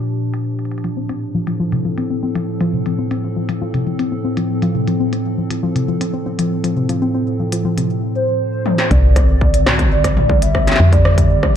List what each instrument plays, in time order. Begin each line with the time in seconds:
Already playing: ambient pad A#2 F3 D4 G4
0.34 closed hi-hat
0.59 closed hi-hat
0.65 closed hi-hat
0.72 closed hi-hat
0.78 closed hi-hat
0.84 ambient pad A2, synth arpeggio sound F3, closed hi-hat
0.97 synth arpeggio sound C4
1.09 synth arpeggio sound C4, closed hi-hat
1.31 ambient pad A4
1.35 synth arpeggio sound F3
1.46 synth arpeggio sound F3, ambient pad C4, closed hi-hat
1.60 synth arpeggio sound F3
1.72 synth arpeggio sound C3, closed hi-hat
1.85 synth arpeggio sound F3
1.98 synth arpeggio sound C4, closed hi-hat
2.10 synth arpeggio sound C4
2.23 synth arpeggio sound C4
2.35 synth arpeggio sound F3, closed hi-hat
2.61 synth arpeggio sound F3, closed hi-hat
2.73 synth arpeggio sound C3
2.86 synth arpeggio sound F3, closed hi-hat
2.99 synth arpeggio sound C4
3.11 synth arpeggio sound C4, closed hi-hat
3.36 synth arpeggio sound F3
3.49 synth arpeggio sound F3, closed hi-hat
3.61 synth arpeggio sound F3
3.74 synth arpeggio sound C3, closed hi-hat
3.87 synth arpeggio sound F3
3.99 synth arpeggio sound C4, closed hi-hat
4.12 synth arpeggio sound C4
4.24 synth arpeggio sound C4
4.37 synth arpeggio sound F3, closed hi-hat
4.62 synth arpeggio sound F3, closed hi-hat
4.75 synth arpeggio sound C3
4.87 synth arpeggio sound F3, closed hi-hat
5.00 synth arpeggio sound C4
5.13 synth arpeggio sound C4, closed hi-hat
5.38 synth arpeggio sound F3
5.50 synth arpeggio sound F3, closed hi-hat
5.63 synth arpeggio sound F3
5.76 synth arpeggio sound C3, closed hi-hat
5.88 synth arpeggio sound F3
6.01 synth arpeggio sound C4, closed hi-hat
6.14 synth arpeggio sound C4
6.26 synth arpeggio sound C4
6.39 synth arpeggio sound F3, closed hi-hat
6.64 synth arpeggio sound F3, closed hi-hat
6.77 synth arpeggio sound C3
6.89 synth arpeggio sound F3, closed hi-hat
7.02 synth arpeggio sound C4
7.14 synth arpeggio sound C4
7.40 synth arpeggio sound F3
7.52 synth arpeggio sound F3, closed hi-hat
7.65 synth arpeggio sound F3
7.78 synth arpeggio sound C3, closed hi-hat
8.15 soft synth lead C5
8.66 high tom
8.78 snare
8.91 fm bass C2, ambient pad D3, soft synth lead D5, kick, closed hi-hat
9.16 kick, cross-stick, closed hi-hat
9.21 ambient pad G3
9.41 kick
9.54 closed hi-hat
9.66 cross-stick, snare, mid tom
9.79 kick, closed hi-hat
9.92 soft synth lead D5
10.04 kick, cross-stick, closed hi-hat
10.17 mid tom
10.27 ambient pad G4, kick
10.42 soft synth lead E5, closed hi-hat
10.55 kick, cross-stick
10.67 snare, closed hi-hat
10.72 snare
10.76 snare
10.80 fm bass F2
10.93 soft synth lead D5, kick, closed hi-hat
11.05 cross-stick
11.18 kick, closed hi-hat
11.43 kick, cross-stick